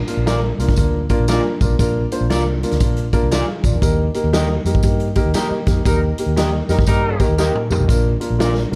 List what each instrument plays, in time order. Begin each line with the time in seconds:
0.07 upright piano A#3 D4 F4 A#4, closed hi-hat, tambourine
0.17 fingered electric bass A#1
0.26 upright piano A#3 D4 F4 A#4, clean electric guitar F4 A#4 D5, snare, closed hi-hat, tambourine
0.58 fingered electric bass C2, upright piano A#3 D4 F4 A#4, closed hi-hat, tambourine
0.69 kick, snare, closed hi-hat
0.76 fingered electric bass D2, upright piano A#3 D4 F4 A#4, kick, closed hi-hat, tambourine
1.09 upright piano A#3 D4 F4 A#4, kick, closed hi-hat, tambourine
1.19 fingered electric bass A#1
1.28 upright piano A#3 D4 F4 A#4, clean electric guitar F4 A#4 D5, snare, closed hi-hat, tambourine
1.61 fingered electric bass C2, upright piano A#3 D4 F4 A#4, kick, closed hi-hat, tambourine
1.70 fingered electric bass B1
1.79 fingered electric bass A#1, upright piano A#3 D4 F4 A#4, kick, closed hi-hat, tambourine
2.12 upright piano A#3 D4 F4 C5, closed hi-hat, tambourine
2.21 fingered electric bass A#1
2.30 fingered electric bass C2, upright piano A#3 D4 F4 A#4, clean electric guitar F4 A#4 D5, snare, closed hi-hat, tambourine
2.63 upright piano A#3 D4 F4 A#4, closed hi-hat, tambourine
2.71 fingered electric bass D2, snare, closed hi-hat
2.80 fingered electric bass A#1, upright piano A#3 D4 F4 A#4, kick, closed hi-hat, tambourine
2.97 closed hi-hat
3.13 upright piano A#3 D4 F4 A#4, kick, closed hi-hat, tambourine
3.23 fingered electric bass C2
3.31 clean electric guitar F4 A#4 D5, snare, closed hi-hat, tambourine
3.48 upright piano G#4 F5
3.63 fingered electric bass A#1, upright piano F4 D5, kick, closed hi-hat, tambourine
3.72 fingered electric bass E2, upright piano D4 A#4
3.82 fingered electric bass D#2, upright piano A#3 D#4 G4 A#4, kick, closed hi-hat, tambourine
4.14 upright piano A#3 D#4 G4 A#4, closed hi-hat, tambourine
4.24 fingered electric bass D#2
4.33 upright piano A#3 D#4 G4 A#4, clean electric guitar G4 A#4 D#5, snare, closed hi-hat, tambourine
4.65 fingered electric bass F2, upright piano A#3 D#4 G4 A#4, closed hi-hat, tambourine
4.75 kick
4.83 fingered electric bass G2, upright piano A#3 D#4 G4 A#4, kick, closed hi-hat, tambourine
5.00 closed hi-hat
5.15 upright piano A#3 D#4 G4 A#4, kick, closed hi-hat, tambourine
5.25 fingered electric bass D#2
5.34 upright piano A#3 D#4 G4 A#4, clean electric guitar G4 A#4 D#5, snare, closed hi-hat, tambourine
5.50 muted fingered electric bass stroke
5.66 fingered electric bass F2, upright piano A#3 D#4 G4 A#4, kick, snare, closed hi-hat, tambourine
5.85 fingered electric bass D#2, horn section G3 D#4 A#4, upright piano A#3 D#4 G4 A#4, kick, closed hi-hat, tambourine
6.18 upright piano A#3 D#4 G4 A#4, closed hi-hat, tambourine
6.26 fingered electric bass D#2
6.36 upright piano A#3 D#4 G4 A#4, clean electric guitar G4 A#4 D#5, snare, closed hi-hat, tambourine
6.67 fingered electric bass F2, horn section G3 D#4 A#4, upright piano A#3 D#4 G4 A#4, snare, closed hi-hat, tambourine
6.79 kick, snare
6.86 fingered electric bass G2, horn section G3 D#4 A#4, upright piano A#3 D#4 G4 A#4, kick, closed hi-hat, tambourine
7.19 upright piano A#3 D#4 G4 A#4, kick, closed hi-hat, tambourine
7.29 fingered electric bass D#2
7.38 upright piano A#3 D#4 G4 A#4, clean electric guitar G4 A#4 D#5, snare, tambourine
7.55 mid tom
7.70 fingered electric bass F2, upright piano A#3 D#4 G4 A#4, floor tom, tambourine
7.79 fingered electric bass B1
7.88 fingered electric bass A#1, upright piano A#3 D4 F4 A#4, kick, closed hi-hat, tambourine
8.20 upright piano A#3 D4 F4 A#4, closed hi-hat, tambourine
8.30 fingered electric bass A#1
8.38 upright piano A#3 D4 F4 A#4, clean electric guitar F4 A#4 D5, snare, closed hi-hat, tambourine
8.71 fingered electric bass C2, upright piano A#3 D4 F4 A#4